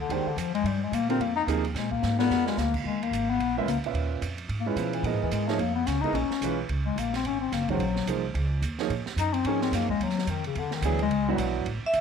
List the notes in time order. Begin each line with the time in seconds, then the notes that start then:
0.00 D3
0.09 D#2 D#3 G#3 D4 G4 C5, ride
0.26 D3, muted upright bass stroke
0.36 F2 F3, hi-hat pedal, ride
0.54 G#3, ride
0.64 G2 G3, ride
0.83 G#3
0.92 A#2 A#3, hi-hat pedal, ride
1.09 D3 G3 C4 F4 A#4, ride
1.19 F2 A#3, ride
1.36 D#4
1.47 D#2 C3 F3 A#3 D#4 G#4, hi-hat pedal, ride
1.65 ride
1.74 A#2 G#3, snare, ride
1.91 A#3, kick
2.03 G#2, snare, hi-hat pedal
2.19 G#3 B3 D4 F4 A#4, snare
2.30 F2, snare
2.47 G#3, snare
2.57 D2 A#3, snare, hi-hat pedal
2.74 kick, crash
2.84 D#2 G#3
3.03 A#3, ride
3.11 G#1, hi-hat pedal, ride
3.30 B3
3.39 A#1, ride
3.57 G#3 A#3 C#4 F4 B4 E5
3.66 C#2 A#3, hi-hat pedal, ride
3.83 A#2 C#4 F4 B4 E5, muted upright bass stroke, ride
3.93 D#2, ride
4.21 F2, hi-hat pedal, ride
4.38 ride
4.49 G#2, ride
4.60 A#3
4.66 G#3 C#4 E4 F4 B4
4.76 B2 F3, hi-hat pedal, ride
4.93 E3, ride
5.03 A#2 F3 G#3 B3 E4 A#4 D#5, ride
5.13 G#2
5.22 D#2 E3
5.31 G#2 G#3, hi-hat pedal, ride
5.47 F3 A3 A#3 D#4 G#4 C#5, snare
5.58 F2 A#3, ride
5.75 B3
5.86 C#2 C#4, snare, hi-hat pedal, ride
6.01 G#3 B3 D#4 E4 A#4 D#5, kick, ride
6.13 A#1 C#4, ride
6.29 muted upright bass stroke, snare
6.41 B1 E3 G#3 C#4 F4 B4, hi-hat pedal, ride
6.69 C#2, ride
6.86 G#3
6.96 A#1 A#3, hi-hat pedal, ride
7.14 C4, snare, ride
7.24 G#1 C#4, ride
7.41 C4
7.52 F#1 A#3, snare, hi-hat pedal, ride
7.68 D#3 F#3 G#3 C#4 F#4 C5, kick, ride
7.79 A#1, ride
7.96 snare
8.06 C2 F3 A#3 D#4 G#4 C5, hi-hat pedal, ride
8.34 C#2, ride
8.62 D#2, hi-hat pedal, ride
8.79 F3 A#3 D#4 G#4 C#5, snare, ride
8.90 A#2, ride
9.06 muted upright bass stroke, snare
9.16 F#2 D#4, hi-hat pedal, ride
9.34 C4, ride
9.44 G#2 F3 A#3 C#4 D#4 G#4 C#5, ride
9.61 C4, snare
9.72 F#2 A#3, snare, hi-hat pedal, ride
9.89 G#3, kick
10.00 D#2 F#3, ride
10.10 snare
10.18 snare
10.27 F2 D#3, hi-hat pedal, ride
10.44 C#3, ride
10.55 E2 D3, ride
10.71 D#3, snare
10.82 D2 E3 F#3 B3 D4 E4 G#4, hi-hat pedal, ride
10.99 G#3, ride
11.09 C#2, ride
11.28 F#3 B3 D4 E4 F#4
11.38 B1, hi-hat pedal, ride
11.65 A1, ride
11.83 E5, muted upright bass stroke
11.93 D2, hi-hat pedal, ride